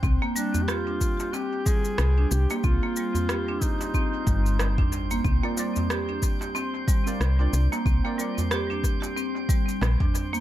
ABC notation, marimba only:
X:1
M:4/4
L:1/16
Q:"Swing 16ths" 1/4=92
K:Bbmix
V:1 name="Marimba"
C B, G, C G D z2 C z G, z2 D z B, | C B, G, C G D z2 C z G, z2 D z B, | C B, G, C G D z2 C z G, z2 D z B, | C B, G, C G D z2 C z G, z2 D z B, |]